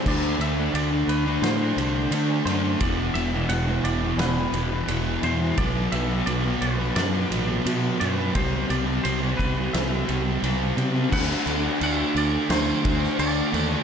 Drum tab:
CC |x---------------|----------------|----------------|----------------|
RD |--x-x-x-x-x-x-x-|x-x-x-x-x-x-x-x-|x-x-x-x-x-x-x-x-|x-x-x-x-x-x-x-x-|
SD |--------o-----o-|--------o-------|--------o-------|--------o-------|
BD |o---------------|o---------------|o---------------|o-----o---------|

CC |x-x-x-x-x-x-x-x-|
RD |----------------|
SD |--------o--o----|
BD |o---------o-----|